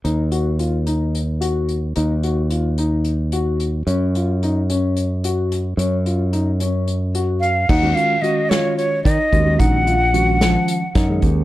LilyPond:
<<
  \new Staff \with { instrumentName = "Flute" } { \time 7/8 \key ees \minor \tempo 4 = 110 r2. r8 | r2. r8 | r2. r8 | r2. f''8 |
ges''8 f''8 ees''8 des''8 des''8 ees''4 | ges''2. r8 | }
  \new Staff \with { instrumentName = "Grand piano" } { \time 7/8 \key ees \minor ees'8 ges'8 f'8 ees'4 ges'4 | ees'8 ges'8 f'8 ees'4 ges'4 | des'8 f'8 ees'8 des'4 ges'4 | des'8 f'8 ees'8 des'4 ges'4 |
ees'8 f'8 ges'8 f'4 ees'4 | ees'8 f'8 ges'8 f4 ees'4 | }
  \new Staff \with { instrumentName = "Tine electric piano" } { \clef bass \time 7/8 \key ees \minor r2. r8 | r2. r8 | r2. r8 | r2. r8 |
r16 <ees aes des' ges'>16 <ees aes des' ges'>16 r16 <ees aes des' ges'>4. r8 <ees aes des' ges'>16 <ees aes des' ges'>16~ | <ees aes des' ges'>8. r16 <ees f aes des'>4~ <ees f aes des'>16 r8 <ees aes des' aes'>8. | }
  \new Staff \with { instrumentName = "Fingered electric bass" } { \clef bass \time 7/8 \key ees \minor ees,2.~ ees,8 | ees,2.~ ees,8 | ges,2.~ ges,8 | ges,2.~ ges,8 |
ees,8 r2 ees16 r16 ees,8 | bes,,2 r8 ges,8 ees,8 | }
  \new DrumStaff \with { instrumentName = "Drums" } \drummode { \time 7/8 hh8 hh8 hh8 hh8 hh8 hh8 hh8 | hh8 hh8 hh8 hh8 hh8 hh8 hh8 | hh8 hh8 hh8 hh8 hh8 hh8 hh8 | hh8 hh8 hh8 hh8 hh8 hh8 hh8 |
<cymc bd>8 hh8 hh8 <hh sn>8 hh8 <hh bd>8 <hh bd>8 | <hh bd>8 hh8 hh8 <hh sn>8 hh8 <hh bd sn>8 <hh bd>8 | }
>>